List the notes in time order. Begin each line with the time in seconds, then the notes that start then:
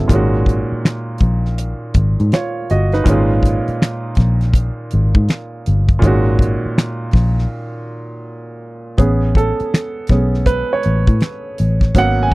Already playing: C#3 F#3 B3 E4 A4
0.08 G#1 A#2 D#3 G#3, kick, closed hi-hat
0.14 C#4 F#4
0.46 kick, closed hi-hat
0.72 muted fingered electric bass stroke
0.85 finger snap, snare, closed hi-hat
1.18 A#1, kick, closed hi-hat
1.45 snare
1.58 closed hi-hat
1.94 G#1, kick, closed hi-hat
2.20 G#2, closed hi-hat
2.32 F4 C#5, finger snap, snare, closed hi-hat
2.70 G1 F#4 D#5, closed hi-hat
2.92 D#4 B4, snare, closed hi-hat
3.04 G#1 A#2 D#3 G#3, kick, closed hi-hat
3.09 C#4 F4
3.43 kick, closed hi-hat
3.68 muted fingered electric bass stroke, closed hi-hat
3.82 finger snap, snare, closed hi-hat
4.15 A#1, kick, snare, closed hi-hat
4.41 snare, closed hi-hat
4.53 kick, closed hi-hat
4.91 G#1, closed hi-hat
5.15 G#2, kick
5.29 finger snap, snare, closed hi-hat
5.66 G1, closed hi-hat
5.89 kick, closed hi-hat
5.99 A#2 D#3, kick
6.03 G#1 G#3 C#4 F#4, closed hi-hat
6.39 kick, closed hi-hat
6.66 muted fingered electric bass stroke
6.78 finger snap, snare, closed hi-hat
7.11 A#1, kick, snare, open hi-hat
7.39 snare
8.98 A1 B3 C#4 G#4, kick, closed hi-hat
9.35 A4, kick, closed hi-hat
9.60 muted fingered electric bass stroke, closed hi-hat
9.74 finger snap, snare, closed hi-hat
10.07 B1 B3 C#4 G#4, kick, snare, closed hi-hat
10.34 snare
10.46 B4, kick, closed hi-hat
10.73 C#5
10.83 A1, closed hi-hat
11.07 A2, kick, closed hi-hat
11.21 finger snap, snare, closed hi-hat
11.58 A1, closed hi-hat
11.81 kick, snare
11.95 G#1 F#3 A#3 B3 C#4 F#5, kick, closed hi-hat
12.23 G#5